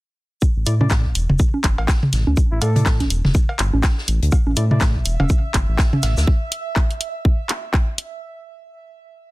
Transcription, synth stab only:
0, 0, Header, 1, 2, 480
1, 0, Start_track
1, 0, Tempo, 487805
1, 414, Time_signature, 4, 2, 24, 8
1, 9163, End_track
2, 0, Start_track
2, 0, Title_t, "Synth stab"
2, 0, Program_c, 0, 62
2, 653, Note_on_c, 0, 57, 74
2, 653, Note_on_c, 0, 64, 64
2, 653, Note_on_c, 0, 74, 81
2, 733, Note_off_c, 0, 57, 0
2, 733, Note_off_c, 0, 64, 0
2, 733, Note_off_c, 0, 74, 0
2, 794, Note_on_c, 0, 64, 89
2, 794, Note_on_c, 0, 74, 106
2, 795, Note_on_c, 0, 57, 99
2, 883, Note_off_c, 0, 57, 0
2, 883, Note_off_c, 0, 64, 0
2, 883, Note_off_c, 0, 74, 0
2, 2573, Note_on_c, 0, 57, 71
2, 2573, Note_on_c, 0, 64, 66
2, 2573, Note_on_c, 0, 74, 76
2, 2653, Note_off_c, 0, 57, 0
2, 2653, Note_off_c, 0, 64, 0
2, 2653, Note_off_c, 0, 74, 0
2, 2714, Note_on_c, 0, 74, 86
2, 2715, Note_on_c, 0, 57, 74
2, 2715, Note_on_c, 0, 64, 66
2, 2803, Note_off_c, 0, 57, 0
2, 2803, Note_off_c, 0, 64, 0
2, 2803, Note_off_c, 0, 74, 0
2, 4494, Note_on_c, 0, 57, 74
2, 4494, Note_on_c, 0, 64, 70
2, 4494, Note_on_c, 0, 74, 81
2, 4573, Note_off_c, 0, 57, 0
2, 4573, Note_off_c, 0, 64, 0
2, 4573, Note_off_c, 0, 74, 0
2, 4635, Note_on_c, 0, 57, 98
2, 4635, Note_on_c, 0, 64, 88
2, 4635, Note_on_c, 0, 74, 106
2, 4724, Note_off_c, 0, 57, 0
2, 4724, Note_off_c, 0, 64, 0
2, 4724, Note_off_c, 0, 74, 0
2, 9163, End_track
0, 0, End_of_file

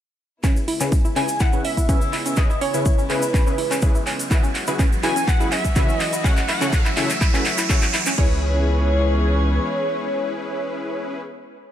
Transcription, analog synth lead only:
0, 0, Header, 1, 2, 480
1, 0, Start_track
1, 0, Key_signature, 4, "minor"
1, 0, Tempo, 483871
1, 434, Time_signature, 4, 2, 24, 8
1, 11623, End_track
2, 0, Start_track
2, 0, Title_t, "Analog synth lead"
2, 0, Program_c, 0, 81
2, 1153, Note_on_c, 0, 80, 106
2, 1393, Note_on_c, 0, 78, 106
2, 1408, Note_off_c, 0, 80, 0
2, 1632, Note_on_c, 0, 76, 108
2, 1647, Note_off_c, 0, 78, 0
2, 2351, Note_on_c, 0, 75, 102
2, 2366, Note_off_c, 0, 76, 0
2, 2590, Note_on_c, 0, 73, 96
2, 2605, Note_off_c, 0, 75, 0
2, 3065, Note_off_c, 0, 73, 0
2, 3071, Note_on_c, 0, 71, 87
2, 3993, Note_off_c, 0, 71, 0
2, 4994, Note_on_c, 0, 80, 109
2, 5232, Note_on_c, 0, 78, 106
2, 5247, Note_off_c, 0, 80, 0
2, 5467, Note_off_c, 0, 78, 0
2, 5473, Note_on_c, 0, 76, 106
2, 5949, Note_off_c, 0, 76, 0
2, 5949, Note_on_c, 0, 75, 106
2, 6191, Note_on_c, 0, 78, 110
2, 6206, Note_off_c, 0, 75, 0
2, 6426, Note_off_c, 0, 78, 0
2, 6432, Note_on_c, 0, 78, 106
2, 6799, Note_off_c, 0, 78, 0
2, 6799, Note_on_c, 0, 76, 106
2, 6913, Note_off_c, 0, 76, 0
2, 6913, Note_on_c, 0, 76, 89
2, 7874, Note_off_c, 0, 76, 0
2, 8114, Note_on_c, 0, 73, 101
2, 11118, Note_off_c, 0, 73, 0
2, 11623, End_track
0, 0, End_of_file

